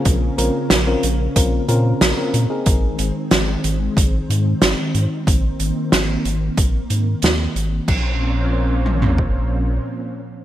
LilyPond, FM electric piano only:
\new Staff \with { instrumentName = "FM electric piano" } { \time 4/4 \key bes \minor \tempo 4 = 92 <c' des' f' aes'>8 <c' des' f' bes'>8 r16 <c' des' f' bes'>16 r8 <c' des' f' bes'>8 <c' des' f' bes'>8. <c' des' f' bes'>8 <c' ees' aes' bes'>16~ | <c' ees' aes' bes'>8 r2. r8 | r1 | r1 | }